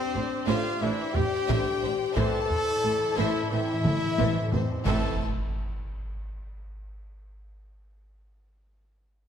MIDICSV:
0, 0, Header, 1, 14, 480
1, 0, Start_track
1, 0, Key_signature, 0, "minor"
1, 0, Tempo, 673401
1, 1541, Time_signature, 4, 2, 24, 8
1, 6615, End_track
2, 0, Start_track
2, 0, Title_t, "Violin section"
2, 0, Program_c, 0, 48
2, 0, Note_on_c, 0, 72, 124
2, 339, Note_off_c, 0, 72, 0
2, 339, Note_on_c, 0, 77, 111
2, 575, Note_off_c, 0, 77, 0
2, 579, Note_on_c, 0, 76, 101
2, 819, Note_on_c, 0, 79, 113
2, 820, Note_off_c, 0, 76, 0
2, 1539, Note_on_c, 0, 81, 127
2, 1540, Note_off_c, 0, 79, 0
2, 2246, Note_off_c, 0, 81, 0
2, 2262, Note_on_c, 0, 76, 110
2, 2498, Note_off_c, 0, 76, 0
2, 2506, Note_on_c, 0, 76, 112
2, 3210, Note_off_c, 0, 76, 0
2, 3224, Note_on_c, 0, 72, 73
2, 3458, Note_off_c, 0, 72, 0
2, 3465, Note_on_c, 0, 81, 101
2, 3732, Note_off_c, 0, 81, 0
2, 6615, End_track
3, 0, Start_track
3, 0, Title_t, "Violin section"
3, 0, Program_c, 1, 48
3, 98, Note_on_c, 1, 74, 67
3, 99, Note_on_c, 1, 67, 67
3, 155, Note_off_c, 1, 74, 0
3, 156, Note_off_c, 1, 67, 0
3, 336, Note_on_c, 1, 72, 109
3, 338, Note_on_c, 1, 76, 97
3, 561, Note_off_c, 1, 72, 0
3, 562, Note_off_c, 1, 76, 0
3, 581, Note_on_c, 1, 76, 87
3, 582, Note_on_c, 1, 72, 79
3, 638, Note_off_c, 1, 76, 0
3, 639, Note_off_c, 1, 72, 0
3, 820, Note_on_c, 1, 67, 85
3, 820, Note_on_c, 1, 74, 86
3, 877, Note_off_c, 1, 67, 0
3, 877, Note_off_c, 1, 74, 0
3, 1060, Note_on_c, 1, 72, 94
3, 1061, Note_on_c, 1, 76, 112
3, 1284, Note_off_c, 1, 72, 0
3, 1284, Note_off_c, 1, 76, 0
3, 1297, Note_on_c, 1, 72, 102
3, 1297, Note_on_c, 1, 76, 95
3, 1354, Note_off_c, 1, 72, 0
3, 1354, Note_off_c, 1, 76, 0
3, 1540, Note_on_c, 1, 76, 95
3, 1541, Note_on_c, 1, 72, 121
3, 1764, Note_off_c, 1, 72, 0
3, 1764, Note_off_c, 1, 76, 0
3, 2022, Note_on_c, 1, 69, 66
3, 2022, Note_on_c, 1, 72, 74
3, 2079, Note_off_c, 1, 69, 0
3, 2079, Note_off_c, 1, 72, 0
3, 2257, Note_on_c, 1, 76, 101
3, 2259, Note_on_c, 1, 72, 102
3, 2483, Note_off_c, 1, 76, 0
3, 2484, Note_off_c, 1, 72, 0
3, 2501, Note_on_c, 1, 76, 72
3, 2504, Note_on_c, 1, 72, 79
3, 2558, Note_off_c, 1, 76, 0
3, 2562, Note_off_c, 1, 72, 0
3, 2747, Note_on_c, 1, 72, 83
3, 2748, Note_on_c, 1, 69, 67
3, 2804, Note_off_c, 1, 72, 0
3, 2805, Note_off_c, 1, 69, 0
3, 2982, Note_on_c, 1, 72, 82
3, 2983, Note_on_c, 1, 76, 86
3, 3205, Note_off_c, 1, 72, 0
3, 3206, Note_off_c, 1, 76, 0
3, 3221, Note_on_c, 1, 72, 75
3, 3222, Note_on_c, 1, 76, 82
3, 3278, Note_off_c, 1, 72, 0
3, 3279, Note_off_c, 1, 76, 0
3, 3462, Note_on_c, 1, 76, 87
3, 3463, Note_on_c, 1, 69, 98
3, 3730, Note_off_c, 1, 69, 0
3, 3730, Note_off_c, 1, 76, 0
3, 6615, End_track
4, 0, Start_track
4, 0, Title_t, "String section"
4, 0, Program_c, 2, 48
4, 0, Note_on_c, 2, 62, 89
4, 0, Note_on_c, 2, 67, 81
4, 0, Note_on_c, 2, 72, 104
4, 0, Note_on_c, 2, 74, 103
4, 1532, Note_on_c, 2, 69, 110
4, 1540, Note_on_c, 2, 64, 113
4, 1543, Note_off_c, 2, 62, 0
4, 1543, Note_off_c, 2, 67, 0
4, 3450, Note_off_c, 2, 69, 0
4, 3451, Note_off_c, 2, 72, 0
4, 3456, Note_off_c, 2, 64, 0
4, 3458, Note_on_c, 2, 69, 94
4, 3459, Note_on_c, 2, 72, 94
4, 3464, Note_on_c, 2, 64, 97
4, 3466, Note_off_c, 2, 74, 0
4, 3466, Note_on_c, 2, 76, 92
4, 3728, Note_off_c, 2, 69, 0
4, 3728, Note_off_c, 2, 72, 0
4, 3731, Note_off_c, 2, 64, 0
4, 3732, Note_off_c, 2, 76, 0
4, 6615, End_track
5, 0, Start_track
5, 0, Title_t, "French horn section"
5, 0, Program_c, 3, 60
5, 0, Note_on_c, 3, 60, 124
5, 325, Note_off_c, 3, 60, 0
5, 347, Note_on_c, 3, 65, 121
5, 582, Note_on_c, 3, 64, 108
5, 584, Note_off_c, 3, 65, 0
5, 811, Note_on_c, 3, 67, 127
5, 821, Note_off_c, 3, 64, 0
5, 1522, Note_off_c, 3, 67, 0
5, 1536, Note_on_c, 3, 69, 127
5, 2259, Note_off_c, 3, 69, 0
5, 2260, Note_on_c, 3, 64, 104
5, 2493, Note_off_c, 3, 64, 0
5, 2501, Note_on_c, 3, 64, 118
5, 3096, Note_off_c, 3, 64, 0
5, 3218, Note_on_c, 3, 60, 83
5, 3455, Note_off_c, 3, 60, 0
5, 3463, Note_on_c, 3, 57, 101
5, 3673, Note_off_c, 3, 57, 0
5, 6615, End_track
6, 0, Start_track
6, 0, Title_t, "Trumpet"
6, 0, Program_c, 4, 56
6, 0, Note_on_c, 4, 60, 114
6, 334, Note_off_c, 4, 60, 0
6, 338, Note_on_c, 4, 65, 110
6, 582, Note_on_c, 4, 64, 104
6, 593, Note_off_c, 4, 65, 0
6, 822, Note_on_c, 4, 67, 118
6, 833, Note_off_c, 4, 64, 0
6, 1342, Note_off_c, 4, 67, 0
6, 1541, Note_on_c, 4, 69, 127
6, 2260, Note_on_c, 4, 64, 108
6, 2271, Note_off_c, 4, 69, 0
6, 2496, Note_off_c, 4, 64, 0
6, 2500, Note_on_c, 4, 64, 121
6, 3224, Note_on_c, 4, 60, 77
6, 3234, Note_off_c, 4, 64, 0
6, 3458, Note_off_c, 4, 60, 0
6, 3462, Note_on_c, 4, 69, 95
6, 3673, Note_off_c, 4, 69, 0
6, 6615, End_track
7, 0, Start_track
7, 0, Title_t, "Viola section"
7, 0, Program_c, 5, 48
7, 99, Note_on_c, 5, 50, 77
7, 103, Note_on_c, 5, 67, 75
7, 156, Note_off_c, 5, 50, 0
7, 160, Note_off_c, 5, 67, 0
7, 338, Note_on_c, 5, 67, 92
7, 340, Note_on_c, 5, 50, 102
7, 562, Note_off_c, 5, 67, 0
7, 563, Note_off_c, 5, 50, 0
7, 587, Note_on_c, 5, 67, 82
7, 589, Note_on_c, 5, 50, 81
7, 644, Note_off_c, 5, 67, 0
7, 646, Note_off_c, 5, 50, 0
7, 825, Note_on_c, 5, 50, 83
7, 826, Note_on_c, 5, 67, 80
7, 882, Note_off_c, 5, 50, 0
7, 883, Note_off_c, 5, 67, 0
7, 1060, Note_on_c, 5, 50, 100
7, 1063, Note_on_c, 5, 67, 115
7, 1284, Note_off_c, 5, 50, 0
7, 1285, Note_off_c, 5, 67, 0
7, 1308, Note_on_c, 5, 50, 74
7, 1308, Note_on_c, 5, 67, 79
7, 1365, Note_off_c, 5, 50, 0
7, 1365, Note_off_c, 5, 67, 0
7, 1541, Note_on_c, 5, 69, 108
7, 1542, Note_on_c, 5, 52, 121
7, 1764, Note_off_c, 5, 69, 0
7, 1765, Note_off_c, 5, 52, 0
7, 2029, Note_on_c, 5, 52, 66
7, 2086, Note_off_c, 5, 52, 0
7, 2263, Note_on_c, 5, 52, 101
7, 2267, Note_on_c, 5, 69, 83
7, 2485, Note_off_c, 5, 52, 0
7, 2488, Note_off_c, 5, 69, 0
7, 2506, Note_on_c, 5, 69, 74
7, 2509, Note_on_c, 5, 52, 81
7, 2563, Note_off_c, 5, 69, 0
7, 2566, Note_off_c, 5, 52, 0
7, 2749, Note_on_c, 5, 52, 80
7, 2751, Note_on_c, 5, 69, 93
7, 2806, Note_off_c, 5, 52, 0
7, 2808, Note_off_c, 5, 69, 0
7, 2987, Note_on_c, 5, 52, 102
7, 2987, Note_on_c, 5, 69, 90
7, 3208, Note_off_c, 5, 52, 0
7, 3208, Note_off_c, 5, 69, 0
7, 3231, Note_on_c, 5, 52, 70
7, 3232, Note_on_c, 5, 69, 65
7, 3288, Note_off_c, 5, 52, 0
7, 3289, Note_off_c, 5, 69, 0
7, 3469, Note_on_c, 5, 60, 89
7, 3472, Note_on_c, 5, 69, 84
7, 3733, Note_off_c, 5, 60, 0
7, 3735, Note_off_c, 5, 69, 0
7, 6615, End_track
8, 0, Start_track
8, 0, Title_t, "Trombone section"
8, 0, Program_c, 6, 61
8, 584, Note_on_c, 6, 52, 97
8, 584, Note_on_c, 6, 62, 93
8, 750, Note_off_c, 6, 52, 0
8, 750, Note_off_c, 6, 62, 0
8, 1544, Note_on_c, 6, 52, 103
8, 1550, Note_on_c, 6, 60, 101
8, 1711, Note_off_c, 6, 52, 0
8, 1714, Note_off_c, 6, 60, 0
8, 2500, Note_on_c, 6, 52, 85
8, 2503, Note_on_c, 6, 60, 85
8, 2668, Note_off_c, 6, 52, 0
8, 2670, Note_off_c, 6, 60, 0
8, 3464, Note_on_c, 6, 52, 97
8, 3468, Note_on_c, 6, 60, 97
8, 3674, Note_off_c, 6, 52, 0
8, 3676, Note_off_c, 6, 60, 0
8, 6615, End_track
9, 0, Start_track
9, 0, Title_t, "Cello section"
9, 0, Program_c, 7, 48
9, 101, Note_on_c, 7, 45, 84
9, 158, Note_off_c, 7, 45, 0
9, 339, Note_on_c, 7, 45, 119
9, 396, Note_off_c, 7, 45, 0
9, 577, Note_on_c, 7, 45, 80
9, 634, Note_off_c, 7, 45, 0
9, 820, Note_on_c, 7, 45, 74
9, 877, Note_off_c, 7, 45, 0
9, 1062, Note_on_c, 7, 45, 115
9, 1119, Note_off_c, 7, 45, 0
9, 1303, Note_on_c, 7, 45, 80
9, 1360, Note_off_c, 7, 45, 0
9, 1544, Note_on_c, 7, 45, 116
9, 1601, Note_off_c, 7, 45, 0
9, 2025, Note_on_c, 7, 45, 72
9, 2082, Note_off_c, 7, 45, 0
9, 2268, Note_on_c, 7, 45, 108
9, 2325, Note_off_c, 7, 45, 0
9, 2511, Note_on_c, 7, 45, 73
9, 2568, Note_off_c, 7, 45, 0
9, 2749, Note_on_c, 7, 45, 65
9, 2806, Note_off_c, 7, 45, 0
9, 2984, Note_on_c, 7, 45, 99
9, 3041, Note_off_c, 7, 45, 0
9, 3228, Note_on_c, 7, 45, 67
9, 3285, Note_off_c, 7, 45, 0
9, 3465, Note_on_c, 7, 45, 107
9, 3732, Note_off_c, 7, 45, 0
9, 6615, End_track
10, 0, Start_track
10, 0, Title_t, "Timpani"
10, 0, Program_c, 8, 47
10, 1648, Note_on_c, 8, 45, 44
10, 1693, Note_off_c, 8, 45, 0
10, 1702, Note_on_c, 8, 45, 45
10, 1745, Note_off_c, 8, 45, 0
10, 1753, Note_on_c, 8, 45, 42
10, 1795, Note_off_c, 8, 45, 0
10, 1861, Note_on_c, 8, 45, 53
10, 1908, Note_off_c, 8, 45, 0
10, 1916, Note_on_c, 8, 45, 50
10, 1962, Note_off_c, 8, 45, 0
10, 1971, Note_on_c, 8, 45, 55
10, 2013, Note_off_c, 8, 45, 0
10, 2022, Note_on_c, 8, 45, 53
10, 2064, Note_off_c, 8, 45, 0
10, 2073, Note_on_c, 8, 45, 53
10, 2119, Note_off_c, 8, 45, 0
10, 2127, Note_on_c, 8, 45, 61
10, 2174, Note_off_c, 8, 45, 0
10, 2182, Note_on_c, 8, 45, 64
10, 2222, Note_off_c, 8, 45, 0
10, 2230, Note_on_c, 8, 45, 59
10, 2275, Note_off_c, 8, 45, 0
10, 2284, Note_on_c, 8, 45, 63
10, 2326, Note_off_c, 8, 45, 0
10, 2387, Note_on_c, 8, 45, 76
10, 2438, Note_off_c, 8, 45, 0
10, 2446, Note_on_c, 8, 45, 75
10, 2492, Note_off_c, 8, 45, 0
10, 2500, Note_on_c, 8, 45, 71
10, 2544, Note_off_c, 8, 45, 0
10, 2604, Note_on_c, 8, 45, 73
10, 2653, Note_off_c, 8, 45, 0
10, 2662, Note_on_c, 8, 45, 97
10, 2706, Note_off_c, 8, 45, 0
10, 2714, Note_on_c, 8, 45, 91
10, 2761, Note_off_c, 8, 45, 0
10, 2769, Note_on_c, 8, 45, 76
10, 2813, Note_off_c, 8, 45, 0
10, 2822, Note_on_c, 8, 45, 94
10, 2872, Note_off_c, 8, 45, 0
10, 2880, Note_on_c, 8, 45, 95
10, 2922, Note_off_c, 8, 45, 0
10, 2930, Note_on_c, 8, 45, 91
10, 2976, Note_off_c, 8, 45, 0
10, 2984, Note_on_c, 8, 45, 97
10, 3028, Note_off_c, 8, 45, 0
10, 3036, Note_on_c, 8, 45, 115
10, 3079, Note_off_c, 8, 45, 0
10, 3087, Note_on_c, 8, 45, 109
10, 3130, Note_off_c, 8, 45, 0
10, 3139, Note_on_c, 8, 45, 95
10, 3183, Note_off_c, 8, 45, 0
10, 3192, Note_on_c, 8, 45, 96
10, 3241, Note_off_c, 8, 45, 0
10, 3249, Note_on_c, 8, 45, 107
10, 3294, Note_off_c, 8, 45, 0
10, 3302, Note_on_c, 8, 45, 104
10, 3348, Note_off_c, 8, 45, 0
10, 3356, Note_on_c, 8, 45, 120
10, 3407, Note_off_c, 8, 45, 0
10, 3461, Note_on_c, 8, 45, 116
10, 3685, Note_off_c, 8, 45, 0
10, 6615, End_track
11, 0, Start_track
11, 0, Title_t, "Double bass section"
11, 0, Program_c, 10, 48
11, 105, Note_on_c, 10, 33, 69
11, 162, Note_off_c, 10, 33, 0
11, 344, Note_on_c, 10, 33, 105
11, 401, Note_off_c, 10, 33, 0
11, 587, Note_on_c, 10, 33, 87
11, 644, Note_off_c, 10, 33, 0
11, 826, Note_on_c, 10, 33, 92
11, 883, Note_off_c, 10, 33, 0
11, 1066, Note_on_c, 10, 33, 126
11, 1123, Note_off_c, 10, 33, 0
11, 1306, Note_on_c, 10, 33, 85
11, 1364, Note_off_c, 10, 33, 0
11, 1549, Note_on_c, 10, 33, 121
11, 1606, Note_off_c, 10, 33, 0
11, 2029, Note_on_c, 10, 33, 65
11, 2086, Note_off_c, 10, 33, 0
11, 2265, Note_on_c, 10, 33, 107
11, 2322, Note_off_c, 10, 33, 0
11, 2511, Note_on_c, 10, 33, 72
11, 2568, Note_off_c, 10, 33, 0
11, 2753, Note_on_c, 10, 33, 73
11, 2810, Note_off_c, 10, 33, 0
11, 2991, Note_on_c, 10, 33, 101
11, 3048, Note_off_c, 10, 33, 0
11, 3232, Note_on_c, 10, 33, 69
11, 3289, Note_off_c, 10, 33, 0
11, 3466, Note_on_c, 10, 33, 90
11, 3732, Note_off_c, 10, 33, 0
11, 6615, End_track
12, 0, Start_track
12, 0, Title_t, "Impact"
12, 0, Program_c, 11, 103
12, 3464, Note_on_c, 11, 60, 95
12, 5383, Note_off_c, 11, 60, 0
12, 6615, End_track
13, 0, Start_track
13, 0, Title_t, "Taiko and cinematic ensemble drums"
13, 821, Note_on_c, 9, 43, 66
13, 892, Note_off_c, 9, 43, 0
13, 1066, Note_on_c, 9, 41, 99
13, 1137, Note_off_c, 9, 41, 0
13, 1544, Note_on_c, 9, 41, 111
13, 1615, Note_off_c, 9, 41, 0
13, 1783, Note_on_c, 9, 43, 58
13, 1855, Note_off_c, 9, 43, 0
13, 2742, Note_on_c, 9, 47, 98
13, 2814, Note_off_c, 9, 47, 0
13, 2982, Note_on_c, 9, 48, 97
13, 3053, Note_off_c, 9, 48, 0
13, 3225, Note_on_c, 9, 43, 108
13, 3296, Note_off_c, 9, 43, 0
13, 6615, End_track
14, 0, Start_track
14, 0, Title_t, "Drums"
14, 3462, Note_on_c, 9, 35, 73
14, 3462, Note_on_c, 9, 49, 78
14, 3533, Note_off_c, 9, 35, 0
14, 3533, Note_off_c, 9, 49, 0
14, 6615, End_track
0, 0, End_of_file